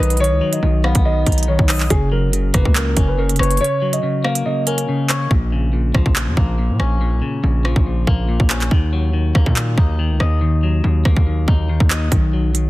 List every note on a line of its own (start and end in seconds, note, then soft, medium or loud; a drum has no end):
0.00 0.33 B1 loud
0.00 0.19 D#3 medium
0.00 0.20 B3 loud
0.00 0.63 D#4 medium
0.00 0.16 B4 medium
0.00 1.05 D#5 medium
0.00 closed hi-hat medium
0.10 closed hi-hat medium
0.17 0.62 D#3 medium
0.17 0.51 C#5 loud
0.17 closed hi-hat medium
0.24 closed hi-hat medium
0.31 0.41 C#2 loud
0.41 1.48 F#3 medium
0.53 0.82 D#5 medium
0.53 closed hi-hat medium
0.63 0.94 B1 loud
0.63 1.04 D#3 medium
0.84 1.91 B3 loud
0.84 1.01 F5 medium
0.84 cross-stick loud
0.95 1.25 B1 loud
0.95 kick loud
0.95 closed hi-hat medium
1.05 1.47 D#3 medium
1.05 1.45 D#5 medium
1.26 1.58 B1 loud
1.26 1.90 D#4 medium
1.26 kick loud
1.26 closed hi-hat medium
1.32 closed hi-hat medium
1.38 closed hi-hat medium
1.43 closed hi-hat soft
1.48 1.90 D#3 medium
1.48 1.88 C#5 medium
1.59 1.89 B1 loud
1.59 kick loud
1.69 1.90 D#5 medium
1.69 cross-stick loud
1.69 clap loud
1.69 open hi-hat medium
1.80 clap medium
1.90 2.52 F#1 loud
1.90 2.32 C#3 medium
1.90 2.07 G#4 loud
1.90 kick loud
1.90 closed hi-hat medium
2.12 3.18 F#3 medium
2.12 2.52 A#4 medium
2.33 2.74 C#3 medium
2.33 closed hi-hat medium
2.54 2.65 F#1 loud
2.54 3.61 A#3 loud
2.54 2.71 B4 medium
2.54 kick loud
2.54 cross-stick loud
2.54 closed hi-hat medium
2.65 2.96 C#2 loud
2.65 kick loud
2.75 3.17 C#3 medium
2.75 3.06 A#4 medium
2.75 clap loud
2.97 3.31 F#1 loud
2.97 4.03 C#4 medium
2.97 kick loud
2.97 closed hi-hat medium
3.08 3.16 B4 medium
3.18 3.60 C#3 medium
3.18 3.35 A#4 medium
3.29 3.39 F1 loud
3.29 closed hi-hat medium
3.36 3.60 F#1 loud
3.36 3.56 B4 medium
3.36 4.46 C#5 medium
3.36 cross-stick loud
3.36 closed hi-hat medium
3.43 closed hi-hat medium
3.51 closed hi-hat medium
3.57 4.02 C#3 medium
3.57 3.91 C#5 loud
3.57 closed hi-hat medium
3.64 closed hi-hat medium
3.82 4.88 F#3 medium
3.93 4.22 D#5 medium
3.93 closed hi-hat medium
4.03 4.45 C#3 medium
4.24 5.31 A#3 medium
4.24 4.41 F5 medium
4.24 cross-stick loud
4.35 closed hi-hat medium
4.46 4.87 C#3 medium
4.46 4.62 D#5 medium
4.67 5.31 C#4 medium
4.67 5.27 A#4 medium
4.67 closed hi-hat medium
4.78 closed hi-hat medium
4.89 5.30 C#3 medium
5.09 5.31 C#5 medium
5.09 cross-stick loud
5.09 clap loud
5.09 closed hi-hat medium
5.30 5.92 A#1 loud
5.30 5.72 A#2 medium
5.30 kick loud
5.52 6.59 C#3 medium
5.73 6.15 A#2 medium
5.94 6.05 A#1 loud
5.94 7.01 F3 medium
5.94 kick loud
5.94 cross-stick loud
6.06 6.29 A#1 loud
6.06 kick loud
6.16 6.57 A#2 medium
6.16 clap loud
6.27 6.36 F2 loud
6.37 6.71 A#1 loud
6.37 7.44 A#3 medium
6.37 kick medium
6.59 7.00 A#2 medium
6.70 6.79 A#2 loud
6.80 7.14 A#1 loud
6.80 7.86 C#4 medium
6.80 cross-stick loud
7.01 7.42 A#2 medium
7.12 7.22 B1 medium
7.22 8.28 C#3 medium
7.43 7.75 A#1 loud
7.43 7.85 A#2 medium
7.65 8.71 F3 medium
7.65 cross-stick loud
7.76 8.06 A#1 loud
7.76 kick medium
7.86 8.27 A#2 medium
8.07 8.39 A#1 loud
8.07 8.71 A#3 medium
8.07 kick medium
8.28 8.71 A#2 medium
8.40 8.70 A#1 loud
8.40 kick loud
8.50 8.72 C#4 medium
8.50 cross-stick loud
8.50 clap loud
8.61 clap medium
8.71 9.33 D#2 loud
8.71 9.12 D#3 medium
8.71 kick loud
8.93 9.99 F#3 medium
9.13 9.55 D#3 medium
9.35 9.46 D#2 loud
9.35 10.41 A#3 loud
9.35 kick loud
9.35 cross-stick loud
9.46 9.76 A#2 loud
9.46 kick medium
9.56 9.98 D#3 medium
9.56 clap loud
9.78 10.12 D#2 loud
9.78 10.84 D#4 medium
9.78 kick medium
9.99 10.40 D#3 medium
10.10 10.20 C#2 loud
10.20 10.81 D#2 loud
10.20 11.27 D#5 medium
10.20 cross-stick loud
10.41 10.83 D#3 medium
10.63 11.69 F#3 medium
10.84 11.04 D#2 loud
10.84 11.25 D#3 medium
11.05 11.16 D#2 loud
11.05 12.12 A#3 medium
11.05 kick loud
11.05 cross-stick loud
11.17 11.47 D#2 loud
11.17 kick medium
11.27 11.68 D#3 medium
11.48 11.79 D#2 loud
11.48 12.12 D#4 medium
11.48 kick medium
11.69 12.10 D#3 medium
11.80 12.10 D#2 loud
11.80 kick loud
11.90 12.12 D#5 medium
11.90 cross-stick loud
11.90 clap loud
12.12 12.70 B1 loud
12.12 12.53 D#3 medium
12.12 kick loud
12.12 closed hi-hat medium
12.33 12.70 F#3 medium
12.54 12.70 D#3 medium
12.54 closed hi-hat medium